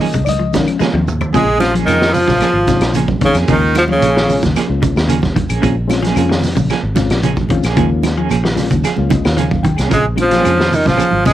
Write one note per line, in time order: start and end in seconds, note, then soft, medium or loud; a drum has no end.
0.00 0.16 D#3 medium
0.00 0.14 F3 medium
0.00 0.14 A#3 medium
0.00 0.13 C#4 medium
0.00 0.13 G#4 medium
0.00 0.27 D#5 medium
0.00 open hi-hat medium
0.00 high conga medium
0.00 low conga medium
0.00 shekere soft
0.13 0.56 C#2 medium
0.13 0.31 G#3 medium
0.13 kick medium
0.13 closed hi-hat medium
0.13 shekere medium
0.25 0.28 D5 medium
0.25 closed hi-hat medium
0.25 high conga medium
0.25 claves medium
0.25 shekere medium
0.29 0.54 D#5 loud
0.39 0.57 F3 medium
0.39 muted clean electric guitar stroke soft
0.53 0.67 D#3 medium
0.53 0.78 F3 soft
0.53 0.78 G#3 soft
0.53 0.78 C#4 medium
0.53 muted clean electric guitar stroke soft
0.53 kick medium
0.53 snare medium
0.53 closed hi-hat medium
0.53 high conga loud
0.53 shekere loud
0.67 muted clean electric guitar stroke soft
0.67 closed hi-hat medium
0.67 claves medium
0.67 shekere soft
0.79 0.94 F3 medium
0.79 0.89 G#3 medium
0.79 0.94 A#3 loud
0.79 0.94 C#4 loud
0.79 0.94 G#4 loud
0.79 muted fingered electric bass stroke soft
0.79 snare soft
0.79 low conga medium
0.79 shekere medium
0.93 1.31 D#2 loud
0.93 1.11 F3 medium
0.93 high tom medium
1.08 mid tom medium
1.08 low conga medium
1.08 shekere medium
1.21 muted clean electric guitar stroke medium
1.21 floor tom medium
1.21 low conga medium
1.21 claves medium
1.21 shekere soft
1.33 1.84 A#1 loud
1.33 1.51 C#3 medium
1.33 1.48 F3 medium
1.33 1.46 G#3 medium
1.33 1.59 G#3 medium
1.33 1.47 A#3 medium
1.33 1.46 C4 medium
1.33 1.46 C#4 medium
1.33 1.47 C#4 medium
1.33 1.46 F4 medium
1.33 1.59 G#4 loud
1.33 1.47 G#4 medium
1.33 kick medium
1.33 snare soft
1.33 closed hi-hat medium
1.33 low conga medium
1.33 shekere medium
1.48 muted clean electric guitar stroke soft
1.57 1.72 F3 medium
1.57 1.71 G#3 medium
1.57 1.71 C4 medium
1.57 1.72 C#4 medium
1.57 1.72 G4 medium
1.57 high conga medium
1.61 1.74 F4 medium
1.61 muted clean electric guitar stroke soft
1.61 snare soft
1.61 closed hi-hat medium
1.61 claves medium
1.61 shekere soft
1.74 1.91 F3 medium
1.74 1.87 A#3 soft
1.74 1.88 C#4 medium
1.74 1.88 G#4 medium
1.74 closed hi-hat medium
1.74 high conga medium
1.74 shekere soft
1.86 2.25 F2 medium
1.86 2.15 D#3 loud
1.86 2.04 F3 medium
1.86 2.22 G#3 medium
1.86 2.04 A#3 medium
1.86 2.23 C4 medium
1.86 2.23 C#4 medium
1.86 2.05 C#4 medium
1.86 2.15 D#4 medium
1.86 2.23 F4 medium
1.86 2.05 G#4 medium
1.86 closed hi-hat medium
1.86 claves medium
1.86 shekere medium
2.01 2.18 D#3 medium
2.01 snare medium
2.13 2.94 F3 loud
2.13 2.95 F4 medium
2.13 muted clean electric guitar stroke soft
2.13 open hi-hat medium
2.13 low conga medium
2.13 shekere medium
2.27 2.40 A#1 medium
2.27 2.44 C#3 medium
2.27 kick medium
2.27 snare soft
2.27 high conga medium
2.27 shekere medium
2.40 2.55 F3 medium
2.40 2.55 A#3 medium
2.40 2.55 C#4 medium
2.40 2.54 G#4 medium
2.40 snare soft
2.40 closed hi-hat medium
2.40 claves medium
2.40 shekere medium
2.53 2.79 G#1 medium
2.53 muted clean electric guitar stroke soft
2.66 2.85 C3 medium
2.66 2.91 G#3 medium
2.66 2.91 C4 medium
2.66 2.91 C#4 medium
2.66 2.92 D#4 medium
2.66 muted clean electric guitar stroke soft
2.66 kick medium
2.66 snare soft
2.66 closed hi-hat medium
2.66 high conga medium
2.66 shekere medium
2.80 3.30 A#1 medium
2.80 snare medium
2.80 closed hi-hat medium
2.80 claves medium
2.80 shekere soft
2.94 3.12 C#3 medium
2.94 3.09 F3 medium
2.94 3.09 A#3 medium
2.94 3.08 C#4 medium
2.94 3.08 G#4 medium
2.94 closed hi-hat medium
2.94 shekere medium
3.07 muted clean electric guitar stroke soft
3.07 kick medium
3.07 high conga medium
3.07 shekere soft
3.20 3.39 D#3 medium
3.20 3.33 G#3 medium
3.20 3.34 C4 medium
3.20 3.34 C#4 medium
3.20 3.35 C#4 medium
3.20 3.34 D#4 medium
3.20 muted clean electric guitar stroke soft
3.20 kick medium
3.20 closed hi-hat medium
3.20 high conga medium
3.20 low conga medium
3.25 3.36 C#3 medium
3.34 3.48 F2 medium
3.34 3.48 A#3 medium
3.34 3.48 C#4 medium
3.34 3.49 G#4 medium
3.34 snare soft
3.34 closed hi-hat medium
3.34 claves medium
3.34 shekere medium
3.48 3.99 D#2 loud
3.48 3.66 C#3 medium
3.48 3.62 F3 medium
3.48 3.84 G#3 medium
3.48 3.84 A#3 medium
3.48 3.62 A#3 medium
3.48 3.84 C#4 medium
3.48 3.62 C#4 medium
3.48 3.74 D#4 medium
3.48 3.84 F4 medium
3.48 3.62 G#4 loud
3.48 kick medium
3.48 closed hi-hat medium
3.48 shekere medium
3.52 3.76 D#3 medium
3.75 3.84 F3 loud
3.75 3.83 F4 medium
3.75 muted clean electric guitar stroke soft
3.75 snare soft
3.75 closed hi-hat medium
3.75 high conga medium
3.75 claves medium
3.75 shekere soft
3.88 4.06 F3 medium
3.88 4.02 A#3 medium
3.88 4.02 C#4 medium
3.88 4.40 C#4 medium
3.88 4.02 G#4 medium
3.88 high conga medium
3.88 shekere soft
3.92 4.40 C#3 loud
4.01 4.39 A#1 medium
4.01 4.19 F3 medium
4.01 4.19 A#3 medium
4.01 4.19 C#4 medium
4.01 4.19 G#4 medium
4.01 closed hi-hat medium
4.01 claves medium
4.01 shekere medium
4.16 4.33 D#3 medium
4.16 snare medium
4.28 4.46 G#3 medium
4.28 4.46 A#3 medium
4.28 4.47 C#4 medium
4.28 4.47 F4 medium
4.28 muted clean electric guitar stroke soft
4.28 open hi-hat medium
4.28 low conga medium
4.28 shekere medium
4.42 4.55 D#2 medium
4.42 4.60 C#3 medium
4.42 kick medium
4.42 snare soft
4.42 closed hi-hat medium
4.42 high conga medium
4.42 shekere medium
4.56 4.70 F3 medium
4.56 4.68 A#3 medium
4.56 4.68 C#4 medium
4.56 4.68 G#4 loud
4.56 snare soft
4.56 closed hi-hat medium
4.56 claves medium
4.56 shekere medium
4.68 4.94 C#2 medium
4.68 5.10 G#3 medium
4.68 5.10 A#3 medium
4.68 5.10 C#4 medium
4.68 5.11 F4 medium
4.68 muted clean electric guitar stroke medium
4.82 muted clean electric guitar stroke soft
4.82 kick medium
4.82 closed hi-hat medium
4.82 high conga loud
4.82 low conga medium
4.82 shekere loud
4.96 5.46 D#2 medium
4.96 snare medium
4.96 claves medium
4.96 shekere soft
5.09 5.26 C#3 medium
5.09 5.23 F3 medium
5.09 5.22 A#3 medium
5.09 5.21 C#4 medium
5.09 5.21 G#4 medium
5.09 closed hi-hat medium
5.09 shekere medium
5.22 muted clean electric guitar stroke soft
5.22 kick medium
5.22 snare soft
5.22 high conga medium
5.22 shekere soft
5.36 5.53 D#3 medium
5.36 muted clean electric guitar stroke soft
5.36 kick medium
5.36 closed hi-hat medium
5.36 high conga medium
5.36 low conga medium
5.49 5.62 A#1 medium
5.49 5.61 A#3 soft
5.49 5.61 C#4 medium
5.49 5.62 G#4 medium
5.49 closed hi-hat medium
5.49 claves medium
5.49 shekere medium
5.62 6.13 A#1 loud
5.62 5.74 G#3 medium
5.62 5.76 A#3 medium
5.62 5.75 C4 medium
5.62 5.75 C#4 medium
5.62 5.76 C#4 medium
5.62 5.75 F4 medium
5.62 5.76 G#4 medium
5.62 muted clean electric guitar stroke medium
5.62 kick medium
5.62 closed hi-hat medium
5.62 low conga medium
5.62 shekere medium
5.88 6.01 G#3 loud
5.88 6.01 C4 medium
5.88 6.01 C#4 medium
5.88 6.02 F4 loud
5.88 muted clean electric guitar stroke soft
5.88 snare soft
5.88 closed hi-hat medium
5.88 high conga medium
5.88 claves medium
5.88 shekere soft
6.03 6.20 F3 medium
6.03 6.17 A#3 medium
6.03 6.16 C#4 medium
6.03 6.16 G#4 medium
6.03 snare soft
6.03 closed hi-hat medium
6.03 high conga medium
6.03 shekere soft
6.15 6.54 F2 medium
6.15 6.33 F3 medium
6.15 6.51 G#3 medium
6.15 6.33 A#3 medium
6.15 6.51 C4 medium
6.15 6.52 C#4 medium
6.15 6.34 C#4 medium
6.15 6.52 F4 loud
6.15 6.34 G#4 medium
6.15 closed hi-hat medium
6.15 claves medium
6.15 shekere medium
6.29 6.47 D#3 medium
6.29 snare medium
6.41 muted clean electric guitar stroke soft
6.41 snare soft
6.41 open hi-hat medium
6.41 low conga medium
6.41 shekere medium
6.56 6.69 A#1 medium
6.56 6.73 C#3 medium
6.56 kick medium
6.56 high conga medium
6.56 shekere medium
6.70 6.84 F3 medium
6.70 6.83 A#3 medium
6.70 6.83 C#4 medium
6.70 6.82 G#4 medium
6.70 snare soft
6.70 closed hi-hat medium
6.70 claves medium
6.70 shekere medium
6.83 7.08 G#1 medium
6.83 muted clean electric guitar stroke soft
6.95 7.13 C3 medium
6.95 7.20 G#3 loud
6.95 7.20 C4 medium
6.95 7.21 C#4 medium
6.95 7.20 F4 loud
6.95 muted clean electric guitar stroke soft
6.95 kick medium
6.95 snare soft
6.95 closed hi-hat medium
6.95 high conga loud
6.95 shekere loud
7.10 7.60 A#1 medium
7.10 snare medium
7.10 closed hi-hat medium
7.10 claves medium
7.10 shekere soft
7.23 7.41 C#3 medium
7.23 7.37 F3 medium
7.23 7.37 A#3 medium
7.23 7.36 C#4 medium
7.23 7.36 G#4 medium
7.23 closed hi-hat medium
7.23 shekere medium
7.37 kick medium
7.37 high conga medium
7.37 shekere soft
7.49 7.67 D#3 medium
7.49 7.62 G#3 medium
7.49 7.62 C4 medium
7.49 7.63 C#4 medium
7.49 7.63 F4 loud
7.49 muted clean electric guitar stroke soft
7.49 kick medium
7.49 closed hi-hat medium
7.49 low conga medium
7.63 7.76 A#1 medium
7.63 7.76 A#3 medium
7.63 7.76 C#4 medium
7.63 7.77 G#4 medium
7.63 snare soft
7.63 closed hi-hat medium
7.63 claves medium
7.63 shekere medium
7.76 8.27 D#2 loud
7.76 7.94 C#3 medium
7.76 7.91 F3 medium
7.76 8.12 G#3 loud
7.76 8.12 A#3 medium
7.76 7.90 A#3 loud
7.76 8.12 C#4 medium
7.76 7.90 C#4 medium
7.76 8.13 F4 loud
7.76 7.90 G#4 loud
7.76 kick loud
7.76 closed hi-hat medium
7.76 shekere medium
7.91 muted clean electric guitar stroke soft
8.03 muted clean electric guitar stroke medium
8.03 snare soft
8.03 closed hi-hat medium
8.03 high conga loud
8.03 claves medium
8.03 shekere soft
8.17 8.35 F3 medium
8.17 8.30 A#3 medium
8.17 8.30 C#4 medium
8.17 8.30 G#4 medium
8.17 shekere soft
8.30 8.68 A#1 medium
8.30 8.47 F3 medium
8.30 8.47 A#3 medium
8.30 8.47 C#4 medium
8.30 8.47 G#4 medium
8.30 closed hi-hat medium
8.30 claves medium
8.30 shekere medium
8.44 8.61 D#3 medium
8.44 snare medium
8.55 8.74 G#3 loud
8.55 8.74 A#3 medium
8.55 8.75 C#4 medium
8.55 8.75 F4 loud
8.55 muted clean electric guitar stroke soft
8.55 snare soft
8.55 open hi-hat medium
8.55 low conga medium
8.55 shekere medium
8.70 8.83 D#2 medium
8.70 8.88 C#3 medium
8.70 muted clean electric guitar stroke soft
8.70 kick medium
8.70 closed hi-hat medium
8.70 high conga medium
8.70 shekere medium
8.84 8.98 F3 medium
8.84 8.96 G#4 loud
8.84 muted clean electric guitar stroke medium
8.84 snare soft
8.84 closed hi-hat medium
8.84 claves medium
8.84 shekere medium
8.96 9.23 C#2 medium
8.96 9.38 G#3 medium
8.96 9.39 A#3 medium
8.96 9.39 C#4 medium
8.96 9.39 F4 medium
8.96 high conga medium
9.10 9.28 C3 medium
9.10 9.36 D#5 medium
9.10 muted clean electric guitar stroke soft
9.10 kick medium
9.10 closed hi-hat medium
9.10 high conga loud
9.10 shekere medium
9.25 9.75 D#2 medium
9.25 snare medium
9.25 claves medium
9.25 shekere soft
9.37 9.54 C#3 medium
9.37 9.51 F3 medium
9.37 9.50 A#3 medium
9.37 9.50 C#4 medium
9.37 9.50 G#4 medium
9.37 9.62 F5 medium
9.37 closed hi-hat medium
9.37 shekere medium
9.51 muted clean electric guitar stroke soft
9.51 kick medium
9.51 high conga medium
9.51 shekere soft
9.63 9.82 D#3 medium
9.63 9.89 G5 medium
9.63 muted clean electric guitar stroke soft
9.63 kick medium
9.63 closed hi-hat medium
9.63 high conga medium
9.63 low conga medium
9.77 9.91 C2 medium
9.77 9.89 A#3 soft
9.77 9.89 C#4 soft
9.77 9.89 G#4 medium
9.77 snare soft
9.77 closed hi-hat medium
9.77 claves medium
9.77 shekere medium
9.89 10.41 A#1 loud
9.89 10.08 C#3 medium
9.89 10.04 F3 medium
9.89 10.02 G#3 medium
9.89 10.04 A#3 medium
9.89 10.03 C4 medium
9.89 10.03 C#4 medium
9.89 10.03 F4 medium
9.89 muted clean electric guitar stroke medium
9.89 kick medium
9.89 closed hi-hat medium
9.89 low conga medium
9.89 shekere medium
9.93 10.05 G#3 medium
9.93 10.06 G#4 medium
10.04 muted clean electric guitar stroke soft
10.15 10.29 G#3 medium
10.15 10.29 C4 medium
10.15 10.29 C#4 medium
10.15 10.30 F4 medium
10.15 muted clean electric guitar stroke soft
10.15 closed hi-hat medium
10.15 high conga medium
10.15 claves medium
10.15 shekere soft
10.21 10.77 F3 medium
10.21 10.76 F4 medium
10.31 10.49 F3 medium
10.31 10.43 A#3 soft
10.31 10.43 C#4 medium
10.31 10.43 G#4 medium
10.31 snare soft
10.31 closed hi-hat medium
10.31 high conga medium
10.31 shekere soft
10.43 10.83 F2 medium
10.43 10.60 F3 medium
10.43 10.79 G#3 medium
10.43 10.61 A#3 medium
10.43 10.79 C4 medium
10.43 10.79 C#4 medium
10.43 10.61 C#4 medium
10.43 10.80 F4 medium
10.43 10.61 G#4 medium
10.43 closed hi-hat medium
10.43 claves medium
10.43 shekere loud
10.58 10.75 D#3 medium
10.58 snare medium
10.71 10.89 D#4 medium
10.71 muted clean electric guitar stroke soft
10.71 open hi-hat medium
10.71 low conga medium
10.71 shekere loud
10.75 10.89 D#3 medium
10.85 10.98 A#1 medium
10.85 11.02 C#3 medium
10.85 11.26 F3 medium
10.85 11.25 F4 medium
10.85 kick medium
10.85 snare soft
10.85 high conga medium
10.85 shekere medium
10.97 11.11 F3 medium
10.97 11.11 A#3 medium
10.97 11.11 C#4 medium
10.97 11.10 G#4 medium
10.97 closed hi-hat medium
10.97 claves medium
10.97 shekere medium
11.11 11.33 G#1 medium
11.11 muted clean electric guitar stroke soft
11.11 high conga medium
11.24 11.33 C3 medium
11.24 11.33 G#3 medium
11.24 11.33 G#3 loud
11.24 11.33 C4 medium
11.24 11.33 C#4 medium
11.24 11.33 F4 medium
11.24 11.33 G#4 medium
11.24 muted clean electric guitar stroke soft
11.24 kick medium
11.24 snare soft
11.24 closed hi-hat medium
11.24 high conga loud
11.24 low conga medium
11.24 shekere medium